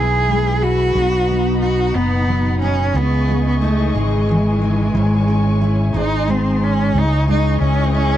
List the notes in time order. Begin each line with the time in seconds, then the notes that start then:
Already playing: B1 E3 B3 E4 G#4 B4 G#5 B5
0.28 G#3
0.62 B3 F#4
0.95 B1 B2 D#4 F#5
1.29 B3
1.62 D#4 F#4
1.95 F#1 B3
2.29 F#3
2.62 B3 C#4
2.93 C#2 C#3 E3 B3 D#5 G#5 C#6
3.28 G#3
3.47 B3
3.62 A3 D#4
3.95 G#1 G#3
4.29 E3
4.62 G#3
4.94 G#1 G#2 C#5 C#6
5.28 C#4
5.61 E4
5.94 G#1 G#2 D#4 C5 C6
6.28 G#3 C4
6.64 C#4
6.94 C#2 C#3 E3 D#4 D#5 G#5 C#6
7.28 G#3 D#4
7.61 C#2 C#4 D#4
7.94 G#3 C#4